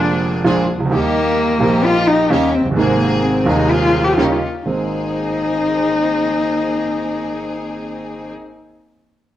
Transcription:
Already playing: F1 F2 D3 G#3 A#3 D4 F4 G#4
0.44 A#1 A#2 D3 G#3 A#3 D4 F4 G#4
0.74 C2
0.80 C#2
0.85 D2
0.89 D#2 D#3 G3 A#3 D#4 G4
0.93 G4
1.58 A#1 A#2 D#3 G3 A#3 D#4 G4
1.62 G4
1.84 F4
2.07 D#4
2.30 D#2 D#3 G3 A#3 C#4 D#4 G4
2.54 C4
2.59 F1
2.65 F#1
2.71 G1 C3 C4
2.75 G#1 G#2 G#3 A#3 C4 D#4 G#4
3.00 A#3
3.23 C4
3.44 D#1 D#2 C3 G#3 A#3 C4 D#4 G#4
3.48 D#4
3.70 F4
4.04 G4
4.13 F4
4.17 D#2 C#3 D#3 G3 A#3 C#4 D#4 G4
4.22 D#4
4.32 F4
4.65 G#1 G#3 A#3 C4 D#4 G#4

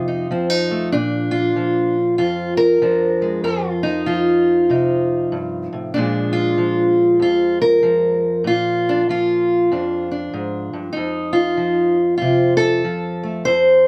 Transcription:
Already playing: F2 C3 F3 F4
0.08 D#4
0.31 F3 C4
0.50 D#4
0.71 A3
0.92 A#2 D4
1.31 F4
1.56 F3
2.18 F2 F4
2.57 A#4
2.82 F3 D4
3.22 G#3
3.44 F2 F4
3.83 D#4
4.06 F3 F4
4.70 C3 D#4
5.32 G2
5.73 A2
5.94 A#2 F3 G#3 D4
6.33 F4
6.58 F3
7.20 F2 F4
7.62 A#4
7.83 F3
8.44 A#2 F4
8.89 D4
9.09 F3 F4
9.72 F2 D4
10.11 D4
10.34 G#2
10.73 G2
10.93 D#4
10.97 F2
11.33 F4
11.57 F3
12.18 C3 F4
12.57 A4
12.84 F3
13.23 A3
13.45 F2 C5

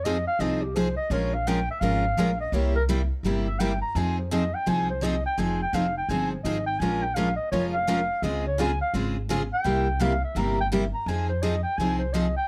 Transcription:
Already playing: F2
0.04 F3 C4 D#4 G#4 D#5
0.27 F5
0.39 C2 F3 C4 D#4 G#4 D#5
0.62 G4
0.76 F3 C4 D#4 G#4 C5
0.97 D#5
1.10 A#1 F3 G#3 C#4 F4 A#4 C#5
1.34 F5
1.47 F3 G#3 C#4 F4 A#4 G5
1.71 E5
1.81 G#1 F3 G#3 C#4 F4 A#4 F5
2.17 A#1 F3 G#3 C#4 F4 A#4
2.40 D#5
2.52 C2 C3 G3 A#3 E4 G4 C#5
2.76 A#4
2.89 C3 G3 A#3 E4 G4
3.23 G1 C3 G3 A#3 E4 G4
3.47 E5
3.59 C3 G3 A#3 E4 G4 G5
3.81 A#5
3.95 F2 F3 C4 D#4 G#4 G#5
4.19 C5
4.31 F3 C4 D#4 G#4 D#5
4.55 G5
4.66 C2 F3 C4 D#4 G#4 G#5
4.90 C5
5.01 F3 C4 D#4 G#4 D#5
5.26 G5
5.38 F1 F3 C4 D#4 G#4 G#5
5.62 G5
5.73 F1 F3 C4 D#4 G#4 F5
5.98 G5
6.09 G1 F3 C4 D#4 G#4 G#5
6.32 C5
6.43 G#1 F3 C4 D#4 G#4 D#5
6.66 G5
6.79 A#1 F3 G#3 C#4 F4 G#5
6.83 A#4
7.02 G5
7.15 F3 G#3 C#4 F4 A#4 F5
7.36 D#5
7.51 F1 F3 G#3 C#4 F4 A#4 C#5
7.74 F5
7.87 F3 G#3 C#4 F4 A#4
8.22 C#2 C#3 G#3 C4 F4 G#4 D#5
8.47 C#5
8.59 C#3 G#3 C4 F4 G#4 G#5
8.81 F5
8.94 G#1 C#3 G#3 C4 F4 G#4
9.30 C#3 G#3 C4 F4 G#4
9.53 G5
9.65 C2 C3 G3 A#3 E4 G4
10.00 C3 G3 A#3 E4 G4 F5
10.24 E5
10.35 G1 C3 G3 A#3 E4 G4 A#5
10.61 G5
10.72 C3 G3 A#3 E4 G4
10.94 A#5
11.06 F2 F3 C4 D#4 G#4 G#5
11.29 C5
11.42 F3 C4 D#4 G#4 D#5
11.63 G5
11.78 C2 F3 C4 D#4 G#4 G#5
11.99 C5
12.13 F3 C4 D#4 G#4 D#5
12.37 G5

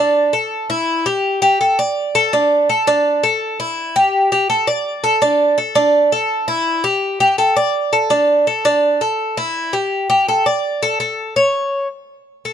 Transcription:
Already playing: D4
0.33 A4
0.70 E4
1.06 G4
1.42 G4
1.61 A4
1.79 D5
2.15 A4
2.33 D4
2.69 A4
2.87 D4
3.23 A4
3.60 E4
3.96 G4
4.32 G4
4.50 A4
4.67 D5
5.04 A4
5.22 D4
5.58 A4
5.75 D4
6.12 A4
6.48 E4
6.84 G4
7.20 G4
7.38 A4
7.56 D5
7.93 A4
8.10 D4
8.47 A4
8.65 D4
9.01 A4
9.37 E4
9.73 G4
10.10 G4
10.28 A4
10.46 D5
10.83 A4
11.00 A4
11.36 C#5
12.45 A4

